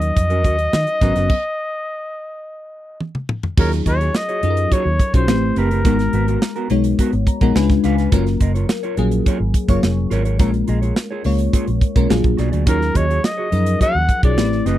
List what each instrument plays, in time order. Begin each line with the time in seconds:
Already playing: fingered electric bass D#2, fm electric piano F#3 C#4 D#4 F#4 A#4, flugelhorn D#5
0.01 muted clean electric guitar stroke, closed hi-hat
0.16 fingered electric bass F2, muted clean electric guitar stroke, kick, closed hi-hat
0.30 clean electric guitar C#4 F#4 A#4, closed hi-hat
0.44 fingered electric bass D#2, clean electric guitar C#4 F#4 A#4, kick, closed hi-hat
0.59 closed hi-hat
0.73 fingered electric bass D#3, snare
0.87 muted clean electric guitar stroke, closed hi-hat
1.01 fingered electric bass G#1, fm electric piano F#3 B3 C#4 A#4, clean electric guitar C#4 F#4 B4, kick, snare, closed hi-hat
1.16 fingered electric bass F#1, clean electric guitar C#4, snare, closed hi-hat
1.29 kick, crash
3.00 high tom
3.15 mid tom
3.29 mid tom
3.43 floor tom
3.57 fingered electric bass D#2, fm electric piano F#3 C#4 D#4 F4 G#4, clean electric guitar F#4 G#4 C#5, flugelhorn A#4, kick, crash
3.72 muted clean electric guitar stroke, snare, closed hi-hat
3.86 fingered electric bass D#2, clean electric guitar F#4 G#4 D#5, flugelhorn C#5, kick, closed hi-hat
4.00 clean electric guitar F#4 G#4 C#5, closed hi-hat
4.14 flugelhorn D#5, snare
4.29 clean electric guitar F#4 G#4 C#5, closed hi-hat
4.43 fingered electric bass F#2, fm electric piano F#3 C#4 D#4 F4 A4, closed hi-hat
4.50 fm electric piano A#4
4.57 muted clean electric guitar stroke, closed hi-hat
4.72 clean electric guitar F#4 G#4 C#5, flugelhorn C#5, kick, closed hi-hat
4.85 fingered electric bass D#2, muted clean electric guitar stroke
5.00 muted clean electric guitar stroke, kick, closed hi-hat
5.13 fingered electric bass B1, fm electric piano F#3 C#4 D#4 F4 G#4, clean electric guitar F#4 G#4 C#5, flugelhorn C5, kick, closed hi-hat
5.28 fingered electric bass A1, fm electric piano A3 C4 E4 G4 B4, snare
5.43 muted clean electric guitar stroke
5.56 fingered electric bass F#1, clean electric guitar C4 G4 B4, flugelhorn A#4, closed hi-hat
5.71 clean electric guitar C4 G4, closed hi-hat
5.85 fingered electric bass G#1, fm electric piano G#3 B3 D#4 F#4 A#4, clean electric guitar B3 F#4 A#4, kick, closed hi-hat
5.99 muted clean electric guitar stroke, snare, closed hi-hat
6.13 fingered electric bass G#1, clean electric guitar B3 F#4 B4, closed hi-hat
6.27 clean electric guitar B3 F#4 A#4, closed hi-hat
6.42 muted clean electric guitar stroke, snare
6.56 clean electric guitar B3 F#4 A#4, closed hi-hat
6.70 fingered electric bass B1, fm electric piano G#3 B3 D#4 F#4 C#5, closed hi-hat
6.84 muted clean electric guitar stroke, closed hi-hat
6.99 clean electric guitar B3 F#4 A#4, kick, closed hi-hat
7.13 fingered electric bass G#1, muted clean electric guitar stroke, closed hi-hat
7.27 fm electric piano A#5, muted clean electric guitar stroke, kick, closed hi-hat
7.41 fingered electric bass A#1, fm electric piano G#3 B3 D#4 F#4 A#4, clean electric guitar B3 F#4 A#4, kick, closed hi-hat
7.55 fingered electric bass C#2, fm electric piano G#3 C#4 D4 E4 B4 G#5, snare
7.63 fm electric piano F4
7.69 muted clean electric guitar stroke, kick, snare, closed hi-hat
7.84 fingered electric bass C#2, clean electric guitar D4 F4 B4, fm electric piano F5, snare, closed hi-hat
7.98 clean electric guitar D4 F4 B4, snare, closed hi-hat
8.12 fingered electric bass F#1, fm electric piano F#3 A#3 C#4 F4 A#4, clean electric guitar F4 A#4 C#5, kick, closed hi-hat
8.26 muted clean electric guitar stroke, snare, closed hi-hat
8.40 fingered electric bass F#1, clean electric guitar F4 A#4 D#5, kick, closed hi-hat
8.54 clean electric guitar F4 A#4 C#5, closed hi-hat
8.69 muted clean electric guitar stroke, snare
8.83 clean electric guitar F4 A#4 C#5, closed hi-hat
8.97 fingered electric bass A#1, fm electric piano F#3 A#3 C#4 F4 G#4, muted clean electric guitar stroke, closed hi-hat
9.11 muted clean electric guitar stroke, closed hi-hat
9.26 clean electric guitar F4 A#4 C#5, kick, closed hi-hat
9.40 fingered electric bass G#1, muted clean electric guitar stroke
9.54 muted clean electric guitar stroke, kick, closed hi-hat
9.68 fingered electric bass F#1, fm electric piano F#3 A#3 C#4 F4 C#5, clean electric guitar F4 A#4 C#5, kick, closed hi-hat
9.83 fingered electric bass F1, snare
9.97 muted clean electric guitar stroke
10.10 fingered electric bass G#1, clean electric guitar F4 A#4 C#5, snare, closed hi-hat
10.25 clean electric guitar F4 C#5, closed hi-hat
10.39 fingered electric bass A#1, fm electric piano G#3 A#3 C#4 F4 A#4, clean electric guitar F4 G#4 C#5, kick, closed hi-hat
10.53 muted clean electric guitar stroke, closed hi-hat
10.68 fingered electric bass A#1, clean electric guitar F4 G#4 D#5, closed hi-hat
10.82 clean electric guitar F4 G#4 C#5, closed hi-hat
10.96 snare
11.11 clean electric guitar F4 G#4 C#5
11.24 fingered electric bass C#2, fm electric piano G#3 A#3 C#4 F4 C#5, muted clean electric guitar stroke, open hi-hat
11.38 muted clean electric guitar stroke, closed hi-hat
11.53 clean electric guitar F4 G#4 C#5, kick, closed hi-hat
11.67 fingered electric bass A#1, muted clean electric guitar stroke, closed hi-hat
11.81 muted clean electric guitar stroke, kick, closed hi-hat
11.96 fingered electric bass B1, fm electric piano G#3 A#3 C#4 F4 A#4, clean electric guitar F4 G#4 C#5, kick, closed hi-hat
12.09 fingered electric bass A#1, fm electric piano F#3 A#3 D4 F4 G#4, snare
12.24 fingered electric bass A#1, muted clean electric guitar stroke, kick, closed hi-hat
12.37 fingered electric bass B1, clean electric guitar F#4 G#4 D5, snare, closed hi-hat
12.52 fingered electric bass D2, clean electric guitar F#4 G#4 D5, closed hi-hat
12.66 fingered electric bass D#2, fm electric piano F#3 C#4 D#4 F4 G#4, clean electric guitar F#4 G#4 C#5, flugelhorn A#4, kick, closed hi-hat
12.80 muted clean electric guitar stroke, snare
12.94 fingered electric bass D#2, clean electric guitar F#4 G#4 D#5, flugelhorn C#5, kick, closed hi-hat
13.08 clean electric guitar F#4 G#4 C#5, closed hi-hat
13.23 flugelhorn D#5, muted clean electric guitar stroke, snare
13.37 clean electric guitar F#4 G#4 C#5
13.51 fingered electric bass F#2, fm electric piano F3 F#3 C#4 D#4 A#4, muted clean electric guitar stroke, closed hi-hat
13.66 muted clean electric guitar stroke, closed hi-hat
13.80 clean electric guitar F#4 G#4 C#5, flugelhorn F#5, kick, closed hi-hat
13.95 fingered electric bass D#2, muted clean electric guitar stroke
14.09 muted clean electric guitar stroke, kick, closed hi-hat
14.23 fingered electric bass B1, fm electric piano F#3 C#4 D#4 F4 G#4, clean electric guitar F#4 G#4 C#5, flugelhorn D5, kick, closed hi-hat
14.37 fingered electric bass A1, fm electric piano A3 B3 E4 G4 B4, snare
14.44 fm electric piano C4
14.51 muted clean electric guitar stroke, snare
14.65 fingered electric bass F#1, clean electric guitar C4 G4 B4, flugelhorn D#5, snare, closed hi-hat